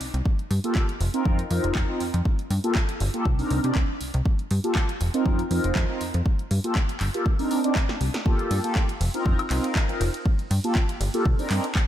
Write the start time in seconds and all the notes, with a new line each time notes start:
0.01 C2, open hi-hat
0.14 C2, closed hi-hat
0.26 kick
0.39 closed hi-hat
0.51 G2, open hi-hat
0.64 A#3 F4 G4 A4, closed hi-hat
0.75 kick, clap
0.89 closed hi-hat
1.00 F1, open hi-hat
1.14 C4 D#4 F4 A#4, closed hi-hat
1.25 F2 C4 D#4 F4 A#4, kick
1.39 closed hi-hat
1.50 F2 C4 D#4 F4 A#4, open hi-hat
1.64 F1, closed hi-hat
1.75 F2, kick, clap
1.89 C4 D#4 F4 A#4
2.00 F2, open hi-hat
2.14 F2, closed hi-hat
2.25 kick
2.39 closed hi-hat
2.50 G2, open hi-hat
2.64 A#3 F4 G4 A4, closed hi-hat
2.75 kick, clap
2.89 closed hi-hat
3.00 G1, open hi-hat
3.14 A#3 F4 G4 A4, closed hi-hat
3.25 C2, kick
3.39 C4 D4 D#4 A#4, open hi-hat
3.51 C2, open hi-hat
3.64 C3 C4 D4 D#4 D5, closed hi-hat
3.75 C2, kick, clap
4.01 C2, open hi-hat
4.14 C2, closed hi-hat
4.26 kick
4.39 closed hi-hat
4.51 G2, open hi-hat
4.64 A#3 F4 G4 A4, closed hi-hat
4.75 kick, clap
4.89 closed hi-hat
5.01 F1, open hi-hat
5.14 C4 D#4 F4 A#4, closed hi-hat
5.25 F2 D#4 F4 A#4, kick
5.39 closed hi-hat
5.50 F2 C4 D#4 F4 A#4, open hi-hat
5.64 F1, closed hi-hat
5.75 F2, kick, clap
5.89 C4 D#4 F4 A#4
6.01 F2, open hi-hat
6.14 F2, closed hi-hat
6.26 kick
6.39 closed hi-hat
6.51 G2, open hi-hat
6.64 A#3 F4 G4 A4, closed hi-hat
6.75 kick, clap
6.89 closed hi-hat
7.00 G1, clap, open hi-hat
7.14 A#3 F4 G4 A4, closed hi-hat
7.26 kick
7.39 C4 D4 D#4 A#4, open hi-hat
7.51 open hi-hat
7.64 C4 D4 D#4 D5, closed hi-hat
7.75 kick, clap
7.89 snare
8.01 C2, open hi-hat
8.14 snare, closed hi-hat
8.25 A#3 F4 G4 A4, kick
8.39 closed hi-hat
8.51 G2, open hi-hat, ride
8.64 A#3 F4 G4 A4, closed hi-hat
8.75 kick, clap
8.89 closed hi-hat
9.01 F1, open hi-hat, ride
9.14 C4 D#4 F4 A#4, closed hi-hat
9.25 F2 C4 D#4 F4 A#4, kick
9.39 closed hi-hat, high woodblock
9.50 C2 C4 D#4 F4 A#4, clap, open hi-hat, ride
9.64 closed hi-hat
9.75 kick, clap
9.89 C4 D#4 F4 A#4, closed hi-hat
10.01 F1, open hi-hat, ride
10.14 closed hi-hat
10.26 kick
10.39 closed hi-hat
10.51 G2, open hi-hat, ride
10.64 A#3 F4 G4 A4, closed hi-hat
10.75 kick, clap
10.89 closed hi-hat
11.01 G1, open hi-hat, ride
11.14 A#3 F4 G4 A4, closed hi-hat
11.25 C2, kick
11.39 C4 D4 D#4 A#4, open hi-hat
11.50 G2 C4 D4 D#4 A#4, clap, open hi-hat, ride
11.64 closed hi-hat
11.75 kick, clap